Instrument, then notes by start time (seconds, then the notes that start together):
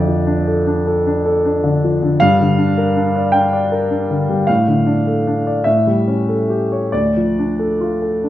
grand piano
Already playing: F2 D3 F3 D4 A4 D5
0.08 F3
0.27 D4
0.47 A4
0.67 D4
0.87 A4
1.07 D4
1.26 A4
1.45 D4
1.64 D3
1.84 F3
2.03 D3
2.20 G2 F5
2.40 D3
2.58 D4
2.78 A#4
2.97 D4
3.16 D5
3.32 D4 G5
3.53 D5
3.72 A#4
3.91 D4
4.10 D3
4.29 G3
4.47 A2 F5
4.68 D3
4.87 D4
5.07 A4
5.27 D4
5.47 D5
5.64 A2 E5
5.87 G3
6.08 C#4
6.29 A4
6.50 G4
6.72 C#5
6.92 D2 D5
7.17 F3
7.39 D4
7.59 A4
7.81 F4
8.02 A4
8.24 D4